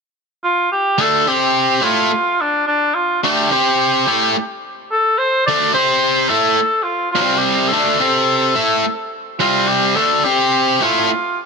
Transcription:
0.44 cor anglais F4
0.72 cor anglais G4
0.98 distorted electric guitar D3 A3 D4, cor anglais A4
1.27 distorted electric guitar C4 G4 C5, cor anglais G4
1.81 distorted electric guitar A3 E4 A4, cor anglais F4
2.41 cor anglais D4
2.67 cor anglais D4
2.94 cor anglais F4
3.23 distorted electric guitar D3 A3 D4, cor anglais G4
3.51 distorted electric guitar C4 G4 C5
4.07 distorted electric guitar A3 E4 A4
4.91 cor anglais A4
5.18 cor anglais C5
5.46 distorted electric guitar D3 A3 D4, cor anglais D5
5.73 distorted electric guitar C4 G4 C5, cor anglais C5
6.28 distorted electric guitar A3 E4 A4, cor anglais A4
6.83 cor anglais F4
7.12 distorted electric guitar C3, cor anglais F4
7.16 distorted electric guitar G3 C4
7.38 cor anglais G4
7.68 cor anglais A4
7.72 distorted electric guitar D3 A3 D4
8.00 distorted electric guitar C4 G4 C5
8.56 distorted electric guitar A3 E4 A4
9.40 distorted electric guitar C3 G3 C4, cor anglais F4
9.68 cor anglais G4
9.95 distorted electric guitar D3 A3 D4, cor anglais A4
10.24 distorted electric guitar C4 G4 C5, cor anglais G4
10.80 distorted electric guitar A3 E4 A4, cor anglais F4

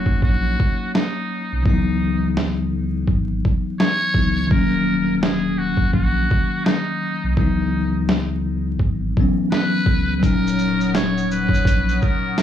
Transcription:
Already playing: sub bass D#1, tine electric piano F#3 A#3 C#4 D#4, muted trumpet F#4
0.06 kick
0.22 sub bass A#1, muted trumpet F#4, kick
0.60 kick
0.94 muted trumpet D#4, snare
1.52 sub bass B1
1.63 sub bass C#2, tine electric piano D#3 F#3, muted trumpet D#4, kick
1.67 tine electric piano E3 B3 D#4
2.37 snare
3.08 sub bass G#1, kick
3.45 kick
3.79 muted trumpet C#5, snare
4.14 sub bass C#2, tine electric piano E3 F#3 B3 D#4, kick
4.47 tine electric piano D#3 F#3, muted trumpet A#4, kick
4.51 sub bass D#1, tine electric piano A#3 C#4
5.18 muted trumpet G#4 A#4
5.23 snare
5.58 muted trumpet F#4
5.77 kick
5.93 sub bass A#1, muted trumpet F#4, kick
6.31 kick
6.65 muted trumpet D#4, snare
7.24 sub bass B1
7.35 sub bass C#2, tine electric piano D#3 F#3, muted trumpet D#4, kick
7.39 tine electric piano E3 B3 D#4
8.09 snare
8.79 sub bass G#1, kick
9.17 tine electric piano E3 F#3 B3 C#4, kick
9.52 muted trumpet B4, snare
9.86 sub bass C#2, kick
10.17 tine electric piano F#3, muted trumpet B4
10.22 sub bass D#1, tine electric piano A#2 C#4, muted trumpet A#4, analog synth pad C#5 F#5 D#6, kick, closed hi-hat, shaker
10.26 tine electric piano D#4
10.47 shaker
10.59 shaker
10.81 shaker
10.95 muted trumpet C#5, snare, closed hi-hat, shaker
11.17 shaker
11.31 muted trumpet B4, shaker
11.49 kick
11.54 shaker
11.65 sub bass A#1, kick, closed hi-hat, shaker
11.89 shaker
12.02 muted trumpet A#4, kick, shaker
12.38 muted trumpet A#4, snare, closed hi-hat, shaker

